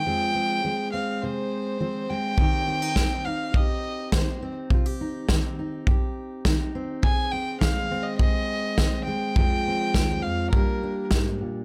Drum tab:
SD |--------|--o---o-|--o---o-|--o---o-|
BD |--------|o-o-o-o-|o-o-o-o-|o-o-o-o-|

SD |--o---o-|
BD |o-o-o-o-|